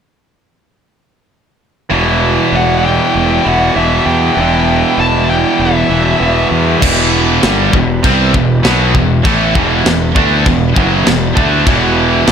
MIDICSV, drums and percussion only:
0, 0, Header, 1, 2, 480
1, 0, Start_track
1, 0, Key_signature, 1, "minor"
1, 0, Tempo, 615385
1, 1487, Time_signature, 4, 2, 24, 8
1, 5324, Tempo, 606061
1, 9675, End_track
2, 0, Start_track
2, 0, Title_t, "Drums"
2, 5322, Note_on_c, 9, 36, 113
2, 5326, Note_on_c, 9, 49, 123
2, 5326, Note_on_c, 9, 57, 73
2, 5401, Note_off_c, 9, 36, 0
2, 5405, Note_off_c, 9, 49, 0
2, 5405, Note_off_c, 9, 57, 0
2, 5800, Note_on_c, 9, 57, 64
2, 5804, Note_on_c, 9, 38, 118
2, 5880, Note_off_c, 9, 57, 0
2, 5884, Note_off_c, 9, 38, 0
2, 6043, Note_on_c, 9, 36, 90
2, 6122, Note_off_c, 9, 36, 0
2, 6286, Note_on_c, 9, 36, 103
2, 6292, Note_on_c, 9, 57, 66
2, 6366, Note_off_c, 9, 36, 0
2, 6372, Note_off_c, 9, 57, 0
2, 6526, Note_on_c, 9, 36, 101
2, 6605, Note_off_c, 9, 36, 0
2, 6764, Note_on_c, 9, 57, 67
2, 6768, Note_on_c, 9, 38, 114
2, 6844, Note_off_c, 9, 57, 0
2, 6848, Note_off_c, 9, 38, 0
2, 7004, Note_on_c, 9, 36, 94
2, 7083, Note_off_c, 9, 36, 0
2, 7244, Note_on_c, 9, 36, 120
2, 7247, Note_on_c, 9, 57, 67
2, 7323, Note_off_c, 9, 36, 0
2, 7326, Note_off_c, 9, 57, 0
2, 7485, Note_on_c, 9, 36, 104
2, 7564, Note_off_c, 9, 36, 0
2, 7725, Note_on_c, 9, 57, 62
2, 7728, Note_on_c, 9, 38, 113
2, 7804, Note_off_c, 9, 57, 0
2, 7808, Note_off_c, 9, 38, 0
2, 7964, Note_on_c, 9, 36, 102
2, 8043, Note_off_c, 9, 36, 0
2, 8203, Note_on_c, 9, 36, 91
2, 8203, Note_on_c, 9, 57, 55
2, 8282, Note_off_c, 9, 36, 0
2, 8283, Note_off_c, 9, 57, 0
2, 8443, Note_on_c, 9, 36, 106
2, 8523, Note_off_c, 9, 36, 0
2, 8681, Note_on_c, 9, 57, 60
2, 8684, Note_on_c, 9, 38, 122
2, 8760, Note_off_c, 9, 57, 0
2, 8764, Note_off_c, 9, 38, 0
2, 8922, Note_on_c, 9, 36, 97
2, 9001, Note_off_c, 9, 36, 0
2, 9159, Note_on_c, 9, 36, 115
2, 9160, Note_on_c, 9, 57, 69
2, 9238, Note_off_c, 9, 36, 0
2, 9239, Note_off_c, 9, 57, 0
2, 9637, Note_on_c, 9, 57, 62
2, 9641, Note_on_c, 9, 38, 116
2, 9675, Note_off_c, 9, 38, 0
2, 9675, Note_off_c, 9, 57, 0
2, 9675, End_track
0, 0, End_of_file